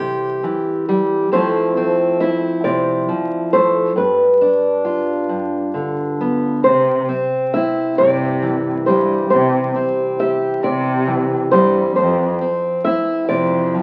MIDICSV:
0, 0, Header, 1, 4, 480
1, 0, Start_track
1, 0, Key_signature, 0, "major"
1, 0, Tempo, 887574
1, 708, Time_signature, 6, 3, 24, 8
1, 7477, End_track
2, 0, Start_track
2, 0, Title_t, "Nylon-string guitar"
2, 0, Program_c, 0, 24
2, 0, Note_on_c, 0, 69, 49
2, 210, Note_off_c, 0, 69, 0
2, 717, Note_on_c, 0, 72, 69
2, 1168, Note_off_c, 0, 72, 0
2, 1191, Note_on_c, 0, 76, 75
2, 1426, Note_off_c, 0, 76, 0
2, 1428, Note_on_c, 0, 74, 63
2, 1883, Note_off_c, 0, 74, 0
2, 1908, Note_on_c, 0, 72, 58
2, 2148, Note_off_c, 0, 72, 0
2, 2150, Note_on_c, 0, 71, 56
2, 3089, Note_off_c, 0, 71, 0
2, 3590, Note_on_c, 0, 72, 59
2, 4074, Note_off_c, 0, 72, 0
2, 4076, Note_on_c, 0, 76, 69
2, 4314, Note_off_c, 0, 76, 0
2, 4316, Note_on_c, 0, 74, 67
2, 4790, Note_off_c, 0, 74, 0
2, 4792, Note_on_c, 0, 72, 57
2, 5024, Note_off_c, 0, 72, 0
2, 5031, Note_on_c, 0, 72, 59
2, 5513, Note_off_c, 0, 72, 0
2, 5515, Note_on_c, 0, 76, 67
2, 5752, Note_off_c, 0, 76, 0
2, 5754, Note_on_c, 0, 74, 64
2, 6225, Note_off_c, 0, 74, 0
2, 6227, Note_on_c, 0, 72, 63
2, 6460, Note_off_c, 0, 72, 0
2, 6467, Note_on_c, 0, 72, 61
2, 6944, Note_off_c, 0, 72, 0
2, 6946, Note_on_c, 0, 76, 67
2, 7183, Note_off_c, 0, 76, 0
2, 7185, Note_on_c, 0, 74, 57
2, 7477, Note_off_c, 0, 74, 0
2, 7477, End_track
3, 0, Start_track
3, 0, Title_t, "Steel-string acoustic guitar"
3, 0, Program_c, 1, 25
3, 0, Note_on_c, 1, 48, 50
3, 0, Note_on_c, 1, 52, 41
3, 0, Note_on_c, 1, 55, 43
3, 0, Note_on_c, 1, 60, 46
3, 0, Note_on_c, 1, 67, 38
3, 232, Note_off_c, 1, 48, 0
3, 233, Note_off_c, 1, 52, 0
3, 235, Note_on_c, 1, 52, 47
3, 473, Note_off_c, 1, 55, 0
3, 480, Note_on_c, 1, 55, 46
3, 681, Note_off_c, 1, 52, 0
3, 682, Note_off_c, 1, 60, 0
3, 710, Note_off_c, 1, 67, 0
3, 712, Note_on_c, 1, 41, 51
3, 713, Note_off_c, 1, 55, 0
3, 717, Note_on_c, 1, 53, 41
3, 719, Note_on_c, 1, 57, 45
3, 725, Note_on_c, 1, 60, 40
3, 728, Note_on_c, 1, 64, 51
3, 951, Note_off_c, 1, 60, 0
3, 957, Note_on_c, 1, 60, 50
3, 1187, Note_off_c, 1, 64, 0
3, 1194, Note_on_c, 1, 64, 51
3, 1431, Note_on_c, 1, 48, 53
3, 1662, Note_off_c, 1, 53, 0
3, 1667, Note_off_c, 1, 48, 0
3, 1669, Note_on_c, 1, 53, 51
3, 1906, Note_off_c, 1, 57, 0
3, 1913, Note_on_c, 1, 57, 51
3, 2116, Note_off_c, 1, 41, 0
3, 2116, Note_off_c, 1, 53, 0
3, 2119, Note_off_c, 1, 57, 0
3, 2119, Note_off_c, 1, 60, 0
3, 2141, Note_on_c, 1, 43, 52
3, 2147, Note_off_c, 1, 64, 0
3, 2386, Note_on_c, 1, 62, 51
3, 2621, Note_on_c, 1, 65, 47
3, 2856, Note_off_c, 1, 43, 0
3, 2863, Note_on_c, 1, 43, 44
3, 3104, Note_on_c, 1, 50, 41
3, 3357, Note_on_c, 1, 59, 42
3, 3560, Note_off_c, 1, 65, 0
3, 3561, Note_off_c, 1, 43, 0
3, 3564, Note_off_c, 1, 62, 0
3, 3566, Note_off_c, 1, 59, 0
3, 3589, Note_off_c, 1, 50, 0
3, 3593, Note_on_c, 1, 48, 44
3, 3833, Note_on_c, 1, 60, 47
3, 4080, Note_on_c, 1, 64, 46
3, 4316, Note_off_c, 1, 48, 0
3, 4316, Note_on_c, 1, 43, 48
3, 4555, Note_on_c, 1, 52, 43
3, 4799, Note_on_c, 1, 55, 46
3, 5005, Note_off_c, 1, 43, 0
3, 5036, Note_on_c, 1, 48, 51
3, 5274, Note_off_c, 1, 60, 0
3, 5276, Note_on_c, 1, 60, 49
3, 5510, Note_off_c, 1, 64, 0
3, 5513, Note_on_c, 1, 67, 49
3, 5742, Note_off_c, 1, 48, 0
3, 5748, Note_on_c, 1, 48, 45
3, 5985, Note_off_c, 1, 52, 0
3, 5987, Note_off_c, 1, 48, 0
3, 5987, Note_on_c, 1, 52, 45
3, 6227, Note_off_c, 1, 55, 0
3, 6233, Note_on_c, 1, 55, 50
3, 6438, Note_off_c, 1, 52, 0
3, 6439, Note_off_c, 1, 67, 0
3, 6440, Note_off_c, 1, 60, 0
3, 6468, Note_on_c, 1, 41, 50
3, 6470, Note_off_c, 1, 55, 0
3, 6712, Note_on_c, 1, 60, 49
3, 6952, Note_on_c, 1, 64, 55
3, 7186, Note_on_c, 1, 48, 51
3, 7427, Note_off_c, 1, 48, 0
3, 7433, Note_on_c, 1, 53, 46
3, 7477, Note_off_c, 1, 41, 0
3, 7477, Note_off_c, 1, 53, 0
3, 7477, Note_off_c, 1, 60, 0
3, 7477, Note_off_c, 1, 64, 0
3, 7477, End_track
4, 0, Start_track
4, 0, Title_t, "Cello"
4, 0, Program_c, 2, 42
4, 3594, Note_on_c, 2, 48, 67
4, 3791, Note_off_c, 2, 48, 0
4, 4317, Note_on_c, 2, 48, 72
4, 4711, Note_off_c, 2, 48, 0
4, 4798, Note_on_c, 2, 43, 67
4, 4993, Note_off_c, 2, 43, 0
4, 5035, Note_on_c, 2, 48, 71
4, 5230, Note_off_c, 2, 48, 0
4, 5750, Note_on_c, 2, 48, 71
4, 6143, Note_off_c, 2, 48, 0
4, 6227, Note_on_c, 2, 43, 68
4, 6424, Note_off_c, 2, 43, 0
4, 6471, Note_on_c, 2, 41, 81
4, 6667, Note_off_c, 2, 41, 0
4, 7192, Note_on_c, 2, 41, 67
4, 7477, Note_off_c, 2, 41, 0
4, 7477, End_track
0, 0, End_of_file